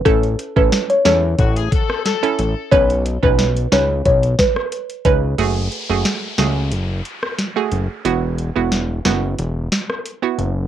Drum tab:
HH |xxx-xxx-xxx-xxx-|xxx-xxx-xxx-xxx-|x-x-x-x-x-x-x-x-|x-x-x-x-x-x-x-x-|
SD |----o-o----ro---|----o-o---or----|----o-o----ro---|----o-o---or----|
BD |o--o----o-o-----|o--o----o-o---o-|----------------|----------------|